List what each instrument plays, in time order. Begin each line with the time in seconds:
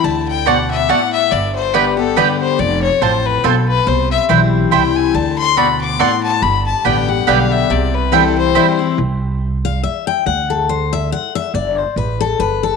0.04 upright bass D2, steel-string acoustic guitar D3, fiddle A5
0.28 fiddle G5
0.46 steel-string acoustic guitar B2, mandolin C4 F#4 D5 A5, fiddle F#5
0.70 fiddle E5
0.89 steel-string acoustic guitar A2, mandolin C4 F#4 D5 A5, fiddle F#5
1.13 fiddle E5
1.31 upright bass G1, steel-string acoustic guitar G2, fiddle D5
1.55 fiddle C5
1.74 steel-string acoustic guitar D3 G3 B3 G4, mandolin B3 G4 D5 G5, fiddle B4
1.97 steel-string acoustic guitar B3 G4, fiddle A4
2.16 steel-string acoustic guitar D3 G3 B3 G4, mandolin B3 G4 D5 G5, fiddle B4
2.41 fiddle C5
2.59 upright bass F1, steel-string acoustic guitar F2, fiddle D5
2.83 fiddle C#5
3.01 upright bass A1, steel-string acoustic guitar A2, mandolin C4 F4 C5 A5, fiddle C5
3.26 fiddle B4
3.44 upright bass B1, steel-string acoustic guitar B2, mandolin C4 F4 C5 A5, fiddle A4
3.68 fiddle B4
3.87 upright bass C2, steel-string acoustic guitar C3, fiddle C5
4.11 fiddle E5
4.29 upright bass B1, steel-string acoustic guitar E3 G3 C4 E4, mandolin C4 E4 C5 G5
4.71 upright bass C2, steel-string acoustic guitar E3 G3 C4 E4, mandolin C4 E4 C5 G5, fiddle G5
4.96 fiddle G#5
5.14 upright bass D2, steel-string acoustic guitar D3, fiddle A5
5.38 fiddle C6
5.57 steel-string acoustic guitar B2, mandolin C4 F#4 D5 A5, fiddle B5
5.81 fiddle D6
5.99 steel-string acoustic guitar A2, mandolin C4 F#4 D5 A5, fiddle C6
6.23 fiddle A5
6.42 upright bass G1, steel-string acoustic guitar G2, fiddle B5
6.66 fiddle A5
6.84 upright bass A1, steel-string acoustic guitar D3 G3 B3 G4, mandolin B3 G4 D5 G5, fiddle G5
7.08 steel-string acoustic guitar B3 G4, fiddle F#5
7.27 upright bass B1, steel-string acoustic guitar D3 G3 B3 G4, mandolin B3 G4 D5 G5, fiddle F5
7.52 fiddle E5
7.70 upright bass C2, steel-string acoustic guitar C3, fiddle D5
7.94 fiddle B4
8.12 steel-string acoustic guitar E3 G3 C4 E4, mandolin C4 E4 C5 G5, fiddle A4
8.37 fiddle C5
8.55 steel-string acoustic guitar E3 G3 C4 E4, mandolin C4 E4 C5 G5
8.79 steel-string acoustic guitar C4 E4
8.98 upright bass C2
9.65 steel-string acoustic guitar F5
9.83 steel-string acoustic guitar E5
10.07 steel-string acoustic guitar G5
10.26 upright bass D2, steel-string acoustic guitar F#5
10.50 steel-string acoustic guitar A4
10.69 steel-string acoustic guitar C5
10.93 steel-string acoustic guitar E5
11.12 steel-string acoustic guitar F#5
11.35 steel-string acoustic guitar E5
11.54 upright bass G1, steel-string acoustic guitar D5
11.78 steel-string acoustic guitar C5
11.96 upright bass A1, steel-string acoustic guitar B4
12.20 steel-string acoustic guitar A4
12.39 upright bass G1, steel-string acoustic guitar B4
12.63 steel-string acoustic guitar A4